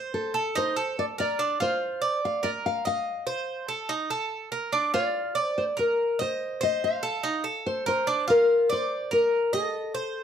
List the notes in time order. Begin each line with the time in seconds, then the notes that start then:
Already playing: C5
0.14 A4
0.34 A4
0.55 D#4 C5
0.76 A4
0.99 D5
1.18 A#4 D5
1.39 D4
1.60 F4 C5
2.02 D5
2.25 F5
2.43 A#4 D5
2.66 F5
2.85 D#5 F5
3.27 C5
3.68 A4
3.89 D#4
4.10 A4
4.52 A#4
4.73 D4
4.94 F4 D5
5.35 D5
5.43 C5
5.58 C5
5.77 A#4
6.19 C5 D#5
6.61 C5 D#5
6.84 F5
7.03 A4
7.23 D#4
7.44 A4
7.66 C5
7.86 A#4 C5
8.07 D4
8.28 F4 A#4
8.70 C5 D5
9.11 A#4
9.53 A4 D#5
9.95 C5